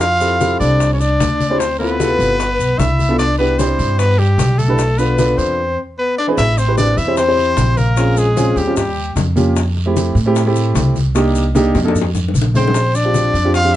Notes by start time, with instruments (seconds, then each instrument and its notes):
Already playing: upright bass F2
0.00 tenor saxophone F4, trumpet F5, high bongo, long guiro, maracas
0.20 grand piano C4 E4 G4 A4, high bongo, high conga, maracas
0.40 grand piano C4 E4 G4 A4, high bongo, high conga, short guiro, maracas
0.60 upright bass C2, tenor saxophone D4, trumpet D5, high conga, short guiro, maracas
0.80 high bongo, high conga, long guiro, maracas
0.93 tenor saxophone C#4, trumpet C#5
1.00 tenor saxophone D4, trumpet D5, high bongo, high conga, maracas
1.20 upright bass D2, high bongo, low bongo, high conga, short guiro, maracas
1.40 high bongo, high conga, short guiro, maracas
1.50 grand piano C4 E4 G4 C5
1.59 tenor saxophone C4, trumpet C5, high bongo, high conga, long guiro, maracas
1.79 tenor saxophone B3, grand piano C4 E4 F4 A4, trumpet B4, high bongo, high conga
2.00 grand piano C3 E4 F4 A4, high bongo, high conga, short guiro, maracas
2.19 upright bass G1, high conga, short guiro, maracas
2.39 high bongo, high conga, long guiro, maracas
2.59 upright bass B1, high conga, maracas
2.79 upright bass C2, tenor saxophone E4, trumpet E5, high bongo, low bongo, high conga, short guiro, maracas
2.99 high bongo, high conga, short guiro, maracas
3.09 grand piano B3 D4 F4 A4
3.19 tenor saxophone D4, trumpet D5, high bongo, long guiro, maracas
3.39 tenor saxophone B3, grand piano D4 E4 G4 B4, trumpet B4, high bongo, high conga
3.59 tenor saxophone C4, grand piano D4 E4 G4 C5, trumpet C5, high bongo, high conga, short guiro, maracas
3.79 upright bass G2, high conga, short guiro, maracas
3.98 tenor saxophone B3, trumpet B4, high bongo, high conga, long guiro, maracas
4.18 tenor saxophone G3, trumpet G4, high bongo, high conga
4.38 upright bass B1, high bongo, low bongo, high conga, short guiro, maracas
4.58 tenor saxophone A3, trumpet A4, high bongo, high conga, short guiro, maracas
4.68 grand piano D4 E4 G4 B4
4.79 high bongo, high conga, long guiro, maracas
4.98 tenor saxophone B3, grand piano D4 F4 A4 B4, trumpet B4, high bongo, high conga, maracas
5.18 grand piano D4 F4 A4 B4, high bongo, high conga, short guiro, maracas
5.38 upright bass E2, tenor saxophone C4, trumpet C5, high conga, short guiro, maracas
5.98 tenor saxophone B3, trumpet B4
6.18 tenor saxophone D4, trumpet D5
6.27 grand piano E3 C4 D4 G#4 B4
6.38 upright bass A1, tenor saxophone E4, trumpet E5, high bongo, high conga, long guiro, maracas
6.58 tenor saxophone C4, trumpet C5, high bongo, high conga, maracas
6.67 grand piano C4 E4 G4 B4
6.78 tenor saxophone D4, trumpet D5, high bongo, high conga, short guiro, maracas
6.97 upright bass E2, tenor saxophone E4, trumpet E5, high conga, short guiro, maracas
7.07 grand piano C4 E4 G4 C5
7.17 tenor saxophone C4, trumpet C5, high bongo, high conga, long guiro, maracas
7.27 grand piano C4 E4 G4 C5
7.37 high bongo, high conga
7.57 upright bass A#1, high bongo, low bongo, high conga, short guiro, maracas
7.77 tenor saxophone A#3, trumpet A#4, high bongo, high conga, short guiro, maracas
7.96 grand piano C4 C#4 F4 G#4, high bongo, long guiro, maracas
8.17 tenor saxophone G#3, trumpet G#4, high bongo, high conga, maracas
8.36 grand piano C4 C#4 F4 G#4, high bongo, high conga, short guiro, maracas
8.56 upright bass D#2, tenor saxophone G3, trumpet G4, high conga, short guiro, maracas
8.66 grand piano C4 C#4 F4 G4
8.77 tenor saxophone G3, trumpet G4, high bongo, high conga, low conga, long guiro, maracas
8.97 high conga
9.16 upright bass F2, high bongo, low bongo, high conga, short guiro, maracas
9.36 grand piano A#3 C#4 F4 G4, high bongo, high conga, short guiro, maracas
9.56 high bongo, long guiro, maracas
9.77 high bongo, high conga
9.86 grand piano A3 C4 E4 G4
9.96 high bongo, high conga, short guiro, maracas
10.15 upright bass A2, high conga, short guiro, maracas
10.26 grand piano A3 C4 E4 G4
10.36 high bongo, high conga, long guiro, maracas
10.46 grand piano A3 C4 E4 G4
10.56 high bongo, high conga, maracas
10.75 upright bass C2, high bongo, low bongo, high conga, short guiro, maracas
10.95 high bongo, high conga, short guiro, maracas
11.15 grand piano A#3 D4 D#4 G4, high bongo, high conga, long guiro, maracas
11.35 high bongo, high conga, maracas
11.55 grand piano A#3 D4 D#4 G4, high bongo, high conga, short guiro, maracas
11.75 upright bass F2, high bongo, high conga, short guiro, maracas
11.84 grand piano A#3 D4 D#4 A4
11.88 high bongo
11.95 high conga, low conga, long guiro, maracas
12.01 high bongo
12.15 low bongo, high conga, low conga, maracas
12.28 low bongo
12.34 upright bass A#1, high conga, short guiro, maracas
12.42 low bongo
12.54 grand piano A3 C#4 D#4 G#4, tenor saxophone C4, trumpet C5, high conga, short guiro, maracas
12.68 low bongo
12.74 high bongo, high conga, long guiro, maracas
12.94 tenor saxophone D4, trumpet D5, high bongo, high conga, maracas
13.04 grand piano C4 D4 F4 G4
13.14 high bongo, high conga, short guiro, maracas
13.34 upright bass F2, high conga, short guiro, maracas
13.44 grand piano C4 D4 F4 G4
13.54 tenor saxophone F4, trumpet F5, high bongo, high conga, long guiro, maracas
13.64 grand piano F3 C4 D4 G4